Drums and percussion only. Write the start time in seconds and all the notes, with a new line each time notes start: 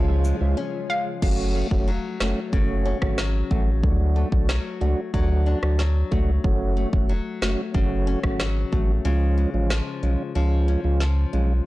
0.24 cabasa
1.22 kick, crash
1.71 kick
2.20 cross-stick, snare
2.53 kick
3.02 kick, cross-stick
3.18 cross-stick, snare
3.51 kick
3.83 kick
4.32 kick
4.49 cross-stick, snare
5.14 kick
5.63 cross-stick
5.79 snare
6.12 kick
6.44 kick
6.93 kick
7.42 cross-stick, snare
7.75 kick
8.24 kick, cross-stick
8.40 cross-stick, snare
8.73 kick
9.70 cross-stick, snare
11.00 snare